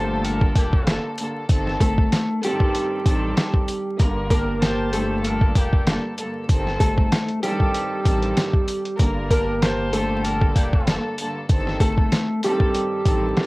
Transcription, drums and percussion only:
0.24 closed hi-hat medium
0.24 sleigh bells medium
0.41 kick medium
0.55 kick loud
0.55 closed hi-hat medium
0.55 sleigh bells medium
0.73 kick loud
0.87 snare loud
0.87 closed hi-hat medium
0.87 sleigh bells soft
1.18 closed hi-hat medium
1.18 sleigh bells medium
1.49 kick loud
1.49 closed hi-hat medium
1.49 sleigh bells medium
1.67 snare soft
1.80 kick loud
1.80 closed hi-hat medium
1.80 sleigh bells medium
1.98 kick medium
2.12 snare loud
2.12 closed hi-hat loud
2.12 sleigh bells medium
2.43 closed hi-hat medium
2.43 sleigh bells medium
2.60 kick medium
2.74 closed hi-hat medium
2.74 sleigh bells medium
3.06 kick loud
3.06 closed hi-hat medium
3.06 sleigh bells medium
3.37 snare loud
3.37 closed hi-hat medium
3.37 sleigh bells soft
3.54 kick loud
3.68 closed hi-hat medium
3.68 sleigh bells medium
3.99 kick loud
3.99 closed hi-hat medium
3.99 sleigh bells medium
4.30 kick loud
4.30 closed hi-hat medium
4.30 sleigh bells medium
4.62 snare loud
4.62 closed hi-hat medium
4.62 sleigh bells medium
4.93 closed hi-hat medium
4.93 sleigh bells medium
5.24 closed hi-hat medium
5.24 sleigh bells medium
5.41 kick loud
5.56 kick loud
5.56 closed hi-hat medium
5.56 sleigh bells medium
5.73 kick loud
5.87 snare loud
5.87 closed hi-hat medium
5.87 sleigh bells soft
6.18 closed hi-hat medium
6.18 sleigh bells medium
6.49 kick loud
6.49 closed hi-hat medium
6.49 sleigh bells medium
6.67 snare soft
6.80 kick loud
6.80 closed hi-hat medium
6.80 sleigh bells medium
6.98 kick medium
7.12 snare loud
7.12 closed hi-hat medium
7.12 sleigh bells medium
7.28 closed hi-hat medium
7.43 closed hi-hat medium
7.43 sleigh bells medium
7.60 kick medium
7.74 closed hi-hat loud
7.74 sleigh bells medium
8.05 kick loud
8.05 closed hi-hat medium
8.05 sleigh bells medium
8.23 closed hi-hat medium
8.37 snare loud
8.37 closed hi-hat medium
8.37 sleigh bells soft
8.54 kick loud
8.68 closed hi-hat medium
8.68 sleigh bells medium
8.85 closed hi-hat medium
8.99 kick loud
8.99 closed hi-hat medium
8.99 sleigh bells medium
9.30 kick loud
9.30 closed hi-hat medium
9.30 sleigh bells medium
9.62 snare loud
9.62 closed hi-hat medium
9.62 sleigh bells medium
9.93 closed hi-hat medium
9.93 sleigh bells medium
10.24 closed hi-hat medium
10.24 sleigh bells medium
10.41 kick loud
10.56 kick loud
10.56 closed hi-hat medium
10.56 sleigh bells medium
10.73 kick loud
10.87 snare loud
10.87 closed hi-hat medium
10.87 sleigh bells soft
11.18 closed hi-hat medium
11.18 sleigh bells medium
11.49 kick loud
11.49 closed hi-hat medium
11.49 sleigh bells medium
11.67 snare soft
11.80 kick loud
11.80 closed hi-hat medium
11.80 sleigh bells medium
11.98 kick medium
12.12 snare loud
12.12 closed hi-hat medium
12.12 sleigh bells medium
12.43 closed hi-hat medium
12.43 sleigh bells medium
12.60 kick medium
12.74 closed hi-hat medium
12.74 sleigh bells medium
13.06 kick loud
13.06 closed hi-hat medium
13.06 sleigh bells medium
13.37 snare loud
13.37 closed hi-hat medium
13.37 sleigh bells soft

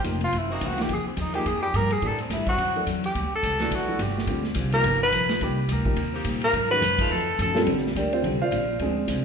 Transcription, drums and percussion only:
0.04 kick soft
0.04 hi-hat pedal medium
0.04 ride medium
0.21 ride medium
0.33 kick soft
0.33 ride medium
0.61 kick soft
0.61 hi-hat pedal medium
0.61 ride medium
0.71 snare soft
0.78 snare medium
0.78 ride medium
0.89 kick soft
0.89 ride medium
1.17 kick soft
1.17 hi-hat pedal medium
1.17 ride medium
1.34 ride medium
1.46 kick soft
1.46 ride medium
1.74 kick soft
1.74 hi-hat pedal medium
1.74 ride medium
1.90 ride medium
2.02 kick soft
2.02 ride medium
2.18 ride soft
2.30 kick soft
2.30 snare soft
2.30 hi-hat pedal medium
2.30 ride medium
2.46 kick medium
2.46 ride soft
2.58 kick soft
2.58 ride medium
2.87 kick soft
2.87 hi-hat pedal medium
2.87 ride medium
3.04 ride medium
3.15 kick soft
3.15 ride medium
3.43 kick soft
3.43 hi-hat pedal medium
3.43 ride medium
3.60 snare soft
3.60 ride soft
3.71 kick soft
3.71 ride medium
3.99 kick soft
3.99 hi-hat pedal medium
3.99 ride medium
4.09 snare soft
4.18 snare medium
4.27 kick soft
4.27 ride medium
4.44 snare soft
4.55 kick soft
4.55 hi-hat pedal medium
4.55 ride medium
4.72 ride soft
4.84 kick soft
4.84 ride medium
5.12 kick soft
5.12 hi-hat pedal medium
5.12 ride medium
5.29 snare medium
5.29 ride medium
5.41 kick soft
5.41 ride medium
5.69 kick soft
5.69 hi-hat pedal medium
5.69 ride medium
5.85 kick medium
5.96 kick soft
5.96 ride medium
6.24 kick soft
6.24 hi-hat pedal medium
6.24 ride medium
6.41 ride medium
6.53 kick soft
6.53 ride medium
6.82 kick soft
6.82 hi-hat pedal medium
6.82 ride medium
6.99 kick medium
6.99 ride medium
7.39 kick soft
7.39 hi-hat pedal medium
7.39 ride medium
7.55 snare medium
7.67 kick soft
7.67 ride medium
7.77 snare soft
7.87 snare soft
7.96 kick soft
7.96 hi-hat pedal medium
7.96 ride medium
8.13 ride soft
8.24 kick soft
8.24 ride medium
8.52 kick soft
8.52 hi-hat pedal soft
8.52 ride medium
8.79 kick soft
8.79 ride medium
9.08 kick soft
9.08 hi-hat pedal medium
9.08 ride medium

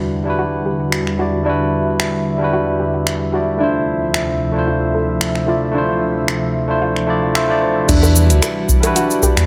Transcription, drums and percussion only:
0.92 finger snap medium
1.07 finger snap soft
2.00 finger snap medium
3.07 finger snap medium
4.14 finger snap medium
5.21 finger snap medium
5.35 finger snap soft
6.28 finger snap medium
6.96 finger snap soft
7.35 finger snap medium
7.89 kick loud
7.89 closed hi-hat medium
7.89 crash loud
7.89 cabasa soft
8.03 high bongo medium
8.03 cabasa soft
8.16 cabasa medium
8.30 closed hi-hat soft
8.30 cabasa soft
8.42 finger snap medium
8.42 closed hi-hat medium
8.42 high bongo medium
8.42 cabasa soft
8.69 kick loud
8.69 cabasa medium
8.83 closed hi-hat soft
8.83 high bongo medium
8.83 cabasa soft
8.96 closed hi-hat medium
8.96 cabasa soft
9.11 cabasa soft
9.23 kick medium
9.23 high bongo medium
9.23 cabasa medium
9.37 finger snap medium
9.37 closed hi-hat soft
9.37 cabasa soft

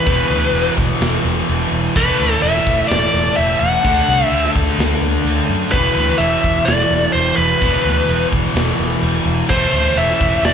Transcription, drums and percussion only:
0.07 kick loud
0.07 crash medium
0.54 crash medium
0.78 kick medium
1.01 snare loud
1.01 crash medium
1.49 crash medium
1.96 kick loud
1.96 crash medium
2.43 crash medium
2.56 snare soft
2.67 kick medium
2.90 snare loud
2.90 crash medium
3.38 crash medium
3.84 kick loud
3.84 crash medium
4.32 crash medium
4.45 snare soft
4.56 kick medium
4.79 snare loud
4.79 crash medium
5.27 crash medium
5.74 kick loud
5.74 crash medium
6.20 crash medium
6.44 kick medium
6.67 snare loud
6.67 crash medium
7.15 crash medium
7.62 kick loud
7.62 crash medium
8.09 crash medium
8.33 kick medium
8.56 snare loud
8.56 crash medium
9.03 crash medium
9.50 kick loud
9.50 crash medium
9.97 crash medium
10.10 snare soft
10.21 kick medium
10.44 snare loud
10.44 crash medium

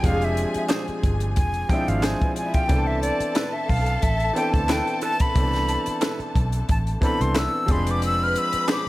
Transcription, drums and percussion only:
0.04 kick loud
0.04 closed hi-hat medium
0.22 closed hi-hat soft
0.37 closed hi-hat medium
0.54 closed hi-hat medium
0.69 snare loud
0.69 clap medium
0.69 closed hi-hat loud
0.88 closed hi-hat soft
1.04 kick medium
1.04 closed hi-hat medium
1.20 closed hi-hat soft
1.36 kick medium
1.36 closed hi-hat medium
1.54 closed hi-hat soft
1.69 kick medium
1.69 closed hi-hat medium
1.88 closed hi-hat soft
2.03 snare loud
2.03 clap loud
2.03 closed hi-hat loud
2.21 kick medium
2.21 closed hi-hat soft
2.36 closed hi-hat medium
2.54 kick loud
2.54 closed hi-hat medium
2.69 kick loud
2.69 closed hi-hat medium
3.03 closed hi-hat medium
3.20 closed hi-hat soft
3.35 snare loud
3.35 clap medium
3.35 closed hi-hat loud
3.69 kick medium
3.69 open hi-hat medium
3.86 closed hi-hat soft
4.02 kick medium
4.02 closed hi-hat medium
4.20 closed hi-hat soft
4.36 closed hi-hat medium
4.54 kick medium
4.54 closed hi-hat soft
4.69 snare loud
4.69 clap loud
4.69 closed hi-hat loud
4.87 closed hi-hat soft
5.01 closed hi-hat medium
5.20 kick loud
5.20 closed hi-hat medium
5.35 kick loud
5.35 closed hi-hat medium
5.53 snare soft
5.53 closed hi-hat soft
5.68 closed hi-hat medium
5.86 closed hi-hat medium
6.01 snare loud
6.01 clap medium
6.01 closed hi-hat loud
6.20 closed hi-hat soft
6.35 kick medium
6.35 closed hi-hat medium
6.52 closed hi-hat medium
6.69 kick medium
6.69 closed hi-hat medium
6.87 closed hi-hat soft
7.02 kick medium
7.02 closed hi-hat medium
7.21 closed hi-hat soft
7.35 snare loud
7.35 clap loud
7.35 closed hi-hat loud
7.68 kick loud
7.68 closed hi-hat medium
7.87 closed hi-hat medium
8.02 closed hi-hat medium
8.36 closed hi-hat medium
8.53 closed hi-hat medium
8.68 snare loud
8.68 clap medium
8.68 closed hi-hat loud

